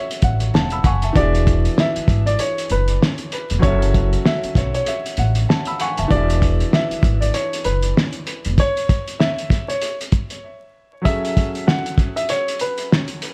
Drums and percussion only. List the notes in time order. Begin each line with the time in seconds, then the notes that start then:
0.11 closed hi-hat
0.22 kick, closed hi-hat
0.40 closed hi-hat
0.55 snare
0.70 closed hi-hat
0.84 kick, closed hi-hat
1.02 closed hi-hat
1.16 kick, closed hi-hat
1.35 closed hi-hat
1.47 kick, closed hi-hat
1.65 closed hi-hat
1.78 snare
1.96 closed hi-hat
2.08 kick, closed hi-hat
2.27 closed hi-hat
2.39 closed hi-hat
2.58 closed hi-hat
2.70 closed hi-hat
2.88 closed hi-hat
3.02 snare
3.18 closed hi-hat
3.32 closed hi-hat
3.50 closed hi-hat
3.63 kick, closed hi-hat
3.82 closed hi-hat
3.94 kick, closed hi-hat
4.13 closed hi-hat
4.25 snare
4.44 closed hi-hat
4.55 kick, snare, closed hi-hat
4.74 closed hi-hat
4.86 closed hi-hat
5.06 closed hi-hat
5.17 closed hi-hat
5.35 closed hi-hat
5.50 snare
5.65 closed hi-hat
5.80 closed hi-hat
5.97 closed hi-hat
6.11 kick, closed hi-hat
6.30 closed hi-hat
6.42 kick, closed hi-hat
6.60 closed hi-hat
6.73 snare
6.91 closed hi-hat
7.03 kick, closed hi-hat
7.22 closed hi-hat
7.34 closed hi-hat
7.53 closed hi-hat
7.64 closed hi-hat
7.83 closed hi-hat
7.97 snare
8.13 closed hi-hat
8.27 closed hi-hat
8.45 closed hi-hat
8.58 kick, closed hi-hat
8.77 closed hi-hat
8.89 kick, closed hi-hat
9.08 closed hi-hat
9.20 snare
9.38 closed hi-hat
9.50 kick, snare, closed hi-hat
9.70 closed hi-hat
9.81 closed hi-hat
10.01 closed hi-hat
10.12 kick, closed hi-hat
10.30 closed hi-hat
11.05 kick, closed hi-hat
11.25 closed hi-hat
11.37 kick, closed hi-hat
11.55 closed hi-hat
11.68 snare
11.86 closed hi-hat
11.98 kick, closed hi-hat
12.17 closed hi-hat
12.29 closed hi-hat
12.48 closed hi-hat
12.59 closed hi-hat
12.78 closed hi-hat
12.92 snare
13.08 closed hi-hat
13.22 closed hi-hat